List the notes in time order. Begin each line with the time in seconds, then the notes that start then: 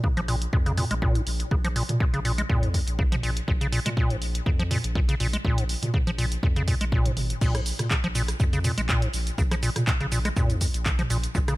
0.04 C#3, kick
0.17 A#1 F3, closed hi-hat
0.28 A#2, open hi-hat
0.42 closed hi-hat
0.53 F2 A#2, kick
0.66 C#3, closed hi-hat
0.77 A#2, mid tom, open hi-hat
0.91 A#1 G#3, closed hi-hat
1.02 A#2, kick
1.15 G#2, closed hi-hat
1.27 A#1, open hi-hat
1.40 closed hi-hat
1.51 A#1 C#3, kick
1.65 F3, closed hi-hat
1.76 A#2, open hi-hat
1.89 A#2, closed hi-hat, mid tom
2.00 A#2, kick
2.14 A#1 C#3, closed hi-hat
2.25 A#2, open hi-hat
2.38 G#3, closed hi-hat
2.49 F2 A#2, kick
2.63 G#2, closed hi-hat
2.74 kick, open hi-hat
2.88 A#1, closed hi-hat
2.99 C#3, kick
3.12 F3, closed hi-hat, mid tom
3.23 A#1 A#2, open hi-hat
3.37 closed hi-hat
3.48 A#1 A#2, kick
3.61 C#3, closed hi-hat
3.72 A#2, open hi-hat
3.86 A#2 G#3, closed hi-hat, mid tom
3.97 A#2, kick
4.10 A#1 G#2, closed hi-hat
4.22 open hi-hat
4.35 closed hi-hat
4.46 F2 C#3, kick
4.59 F3, closed hi-hat
4.71 A#2, mid tom, open hi-hat
4.84 A#1, closed hi-hat
4.95 A#2, kick
5.09 C#3, closed hi-hat
5.20 A#1 A#2, open hi-hat
5.33 G#3, closed hi-hat
5.45 A#1 A#2, kick
5.58 G#2, closed hi-hat
5.69 open hi-hat
5.82 A#2, closed hi-hat, mid tom
5.94 C#3, kick
6.07 A#1 F3, closed hi-hat
6.18 A#2, open hi-hat
6.32 closed hi-hat
6.43 F2 A#2, kick
6.56 C#3, closed hi-hat
6.68 A#2, kick, open hi-hat
6.81 A#1 G#3, closed hi-hat
6.92 A#2, kick
7.05 G#2, closed hi-hat, mid tom
7.17 G#1, mid tom, open hi-hat
7.30 closed hi-hat
7.41 A#1 A#2, kick, crash, shaker
7.55 G#2, cross-stick, closed hi-hat, shaker
7.66 open hi-hat, shaker
7.79 A#2, cross-stick, closed hi-hat, mid tom, shaker
7.91 C#3, kick, clap, shaker
8.04 A#1 F3, closed hi-hat
8.15 A#2, open hi-hat, shaker
8.28 cross-stick, closed hi-hat, shaker
8.40 F2 A#2, kick, shaker
8.53 C#3, closed hi-hat, shaker
8.64 A#2, mid tom, open hi-hat, shaker
8.78 A#1 G#3, closed hi-hat, shaker
8.89 A#2, kick, clap, shaker
9.02 G#2, closed hi-hat
9.14 A#1, open hi-hat, shaker
9.27 closed hi-hat, shaker
9.38 A#1 C#3, kick, shaker
9.51 F3, cross-stick, closed hi-hat, shaker
9.63 A#2, open hi-hat, shaker
9.76 A#2, cross-stick, closed hi-hat, mid tom, shaker
9.87 A#2, kick, clap, shaker
10.01 A#1 C#3, closed hi-hat
10.12 A#2, open hi-hat, shaker
10.25 G#3, cross-stick, closed hi-hat, shaker
10.36 F2 A#2, kick, shaker
10.50 G#2, closed hi-hat, shaker
10.61 kick, open hi-hat, shaker
10.74 A#1, closed hi-hat, shaker
10.86 C#3, kick, clap, shaker
10.99 F3, closed hi-hat, mid tom
11.10 A#1 A#2, open hi-hat, shaker
11.24 closed hi-hat, shaker
11.35 A#1 A#2, kick, shaker
11.48 C#3, cross-stick, closed hi-hat, shaker